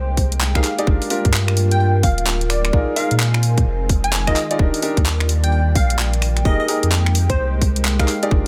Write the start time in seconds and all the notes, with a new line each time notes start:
Already playing: C2 D#3 G#3 A#3 D#4 G4 A#4 G5
0.17 kick, open hi-hat
0.32 closed hi-hat
0.41 clap
0.55 D#4 G4 G#4 A#4 F5, finger snap, kick, closed hi-hat
0.64 F5, clap, open hi-hat
0.79 D#4 G4 G#4 D5, closed hi-hat
0.87 G1 G3 D4 F4 G4 A#4, kick
1.02 open hi-hat
1.10 D4 F4 G4 A#4, open hi-hat
1.25 G2, kick, closed hi-hat
1.33 clap
1.48 finger snap, closed hi-hat
1.57 open hi-hat
1.71 G5, closed hi-hat
1.80 G5
2.03 D1 F5, kick, open hi-hat
2.18 closed hi-hat
2.27 clap
2.41 closed hi-hat
2.50 D5, finger snap, open hi-hat
2.65 finger snap, closed hi-hat
2.73 A#1 D#3 G#3 C4 D#4 F4 G#4 A#4, kick
2.88 G#5
2.96 D#4 F4 G#4 A#4 F5, open hi-hat
3.11 A#2, closed hi-hat
3.20 clap
3.34 finger snap, closed hi-hat
3.43 open hi-hat
3.58 kick, closed hi-hat
3.66 F1
3.89 kick, open hi-hat
4.04 G#5, closed hi-hat
4.13 clap
4.27 D#4 F4 G#4 A#4 D#5, finger snap, kick, closed hi-hat
4.36 clap, open hi-hat
4.51 D#4 F4 G#4 D5, closed hi-hat
4.59 D#1 G3 A#3 D4 D#4 G4 A#4, kick
4.74 D5, open hi-hat
4.82 D4 D#4 G4 A#4, open hi-hat
4.97 D#2, kick, closed hi-hat
5.06 clap
5.20 finger snap, closed hi-hat
5.29 open hi-hat
5.44 G5, closed hi-hat
5.52 G5
5.75 A#1 F5, kick, open hi-hat
5.90 closed hi-hat
5.99 clap
6.13 closed hi-hat
6.22 finger snap, open hi-hat
6.37 finger snap, closed hi-hat
6.45 F1 G#3 D#4 G4 G#4 A#4 D#5, kick
6.60 D#5
6.68 D#4 G4 G#4 A#4, open hi-hat
6.83 F2 G#3, closed hi-hat
6.92 clap
7.00 A#4
7.06 finger snap, closed hi-hat
7.15 open hi-hat
7.30 C5, kick, closed hi-hat
7.38 C2
7.61 kick, open hi-hat
7.76 closed hi-hat
7.85 clap
7.99 D#4 G4 G#4 A#4 F5, finger snap, kick, closed hi-hat
8.08 F5, clap, open hi-hat
8.23 D#4 G4 G#4 D5, closed hi-hat
8.31 G1 G3 A#3 D4 F4 G4 A#4, kick